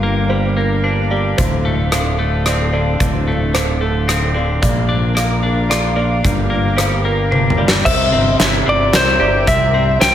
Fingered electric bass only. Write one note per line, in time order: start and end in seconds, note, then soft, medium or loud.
0.00 1.35 G1 medium
1.38 2.97 D1 medium
3.00 4.59 D1 medium
4.63 6.21 A#1 medium
6.25 7.83 G1 medium
7.86 8.11 C2 medium
8.13 8.37 G1 medium
8.40 8.64 G1 medium
8.67 8.91 G1 medium
8.94 9.18 C2 medium
9.21 9.45 G1 medium
9.47 9.97 C2 medium
10.01 10.15 C2 medium